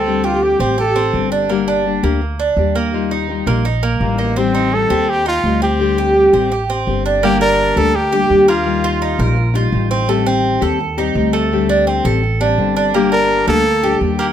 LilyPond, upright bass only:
\new Staff \with { instrumentName = "Upright bass" } { \clef bass \time 4/4 \key g \minor \tempo 4 = 168 d,4. a,,4. g,,4~ | g,,4. d,4. ees,4~ | ees,4. bes,,4. a,,4~ | a,,4. ees,4. d,4~ |
d,4. a,,4. g,,4~ | g,,4. d,4. ees,4~ | ees,4. bes,,4. a,,4~ | a,,4. ees,4. d,4~ |
d,4. a,,4. g,,4~ | g,,4. d,4. ees,4 | }